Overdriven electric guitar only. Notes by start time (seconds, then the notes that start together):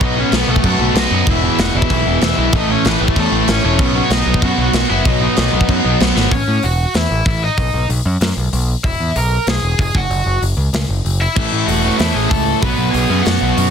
0.01 D#4 D#5
0.19 C#4 C#5
0.34 B3 B4
0.50 A3 A4
0.66 A3 A4
0.97 D#4 D#5
1.14 D#4 D#5
1.29 E4 E5
1.60 F#4 F#5
1.76 E4 E5
2.22 E4 E5
2.55 D#4 D#5
2.71 C#4 C#5
2.87 B3 B4
3.03 A3 A4
3.18 A3 A4
3.49 C#4 C#5
3.65 C#4 C#5
4.04 C#5
4.11 D#4 D#5
4.43 F#4 F#5
4.89 E4 E5
5.06 D#4 D#5
6.33 C#4 C#5
6.63 F#4 F#5
6.96 E4 E5
7.27 E4 E5
7.44 D#4 D#5
8.85 E4 E5
9.17 A#4 A#5
9.48 G#4 G#5
9.81 G#4 G#5
9.96 F#4 F#5
11.21 E4 E5
11.36 E4 E5
11.67 F#4 F#5
11.98 E4 E5
12.14 G#4 G#5
12.30 A4 A5
12.61 B4 B5
12.91 G#4 G#5
13.22 F#4 F#5